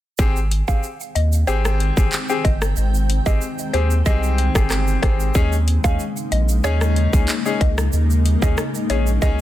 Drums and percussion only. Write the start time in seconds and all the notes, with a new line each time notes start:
0.18 kick, shaker
0.36 shaker
0.51 closed hi-hat, shaker
0.68 kick, shaker
0.83 shaker
1.00 shaker
1.16 closed hi-hat, shaker
1.33 shaker
1.48 shaker
1.65 cross-stick, shaker
1.80 closed hi-hat, shaker
1.97 kick, shaker
2.12 clap, shaker
2.29 shaker
2.45 kick, closed hi-hat, shaker
2.62 cross-stick, shaker
2.76 shaker
2.94 shaker
3.10 closed hi-hat, shaker
3.26 kick, shaker
3.41 shaker
3.59 shaker
3.74 closed hi-hat, shaker
3.91 shaker
4.06 kick, shaker
4.23 shaker
4.38 closed hi-hat, shaker
4.55 kick, cross-stick, shaker
4.70 cross-stick, clap, shaker
4.87 shaker
5.03 kick, cross-stick, closed hi-hat, shaker
5.20 shaker
5.35 kick, shaker
5.52 shaker
5.68 closed hi-hat, shaker
5.84 kick, shaker
5.99 shaker
6.17 shaker
6.32 closed hi-hat, shaker
6.49 shaker
6.64 shaker
6.81 cross-stick, shaker
6.96 closed hi-hat, shaker
7.13 kick, shaker
7.28 clap, shaker
7.46 shaker
7.61 kick, closed hi-hat, shaker
7.78 cross-stick, shaker
7.93 shaker
8.10 shaker
8.26 closed hi-hat, shaker
8.42 kick, shaker
8.57 cross-stick, shaker
8.75 shaker
8.90 closed hi-hat, shaker
9.07 shaker
9.22 kick, shaker